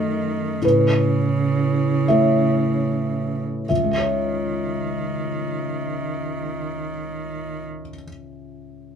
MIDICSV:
0, 0, Header, 1, 3, 480
1, 0, Start_track
1, 0, Key_signature, 4, "minor"
1, 0, Tempo, 860832
1, 349, Tempo, 953895
1, 350, Time_signature, 6, 3, 24, 8
1, 829, Tempo, 1027397
1, 1309, Tempo, 1067616
1, 4163, End_track
2, 0, Start_track
2, 0, Title_t, "Felt piano"
2, 0, Program_c, 0, 0
2, 0, Control_c, 0, 64, 127
2, 0, Note_on_c, 0, 42, 41
2, 0, Note_on_c, 0, 57, 34
2, 0, Note_on_c, 0, 63, 31
2, 0, Note_on_c, 0, 69, 57
2, 0, Note_on_c, 0, 75, 38
2, 325, Note_off_c, 0, 57, 0
2, 325, Note_off_c, 0, 69, 0
2, 327, Note_off_c, 0, 63, 0
2, 328, Note_off_c, 0, 75, 0
2, 347, Note_on_c, 0, 45, 42
2, 359, Note_on_c, 0, 71, 60
2, 360, Control_c, 0, 64, 0
2, 365, Note_off_c, 0, 42, 0
2, 462, Control_c, 0, 64, 127
2, 1047, Note_off_c, 0, 45, 0
2, 1053, Note_off_c, 0, 71, 0
2, 1064, Note_on_c, 0, 76, 49
2, 1069, Note_on_c, 0, 57, 31
2, 1071, Note_on_c, 0, 64, 30
2, 1073, Note_on_c, 0, 73, 31
2, 1777, Note_off_c, 0, 76, 0
2, 1780, Note_off_c, 0, 57, 0
2, 1780, Note_off_c, 0, 64, 0
2, 1781, Note_off_c, 0, 73, 0
2, 1795, Note_on_c, 0, 76, 35
2, 1801, Note_on_c, 0, 37, 25
2, 1809, Control_c, 0, 64, 0
2, 1833, Note_on_c, 0, 49, 26
2, 1863, Note_on_c, 0, 56, 27
2, 1890, Note_off_c, 0, 76, 0
2, 1896, Control_c, 0, 64, 127
2, 1896, Note_on_c, 0, 76, 27
2, 1926, Note_on_c, 0, 73, 27
2, 3645, Note_off_c, 0, 37, 0
2, 3678, Note_off_c, 0, 49, 0
2, 3708, Note_off_c, 0, 56, 0
2, 3741, Note_off_c, 0, 76, 0
2, 3771, Note_off_c, 0, 73, 0
2, 4163, End_track
3, 0, Start_track
3, 0, Title_t, "Cello"
3, 0, Program_c, 1, 42
3, 0, Note_on_c, 1, 51, 43
3, 351, Note_on_c, 1, 49, 40
3, 359, Note_off_c, 1, 51, 0
3, 1674, Note_off_c, 1, 49, 0
3, 1797, Note_on_c, 1, 51, 30
3, 3565, Note_off_c, 1, 51, 0
3, 4163, End_track
0, 0, End_of_file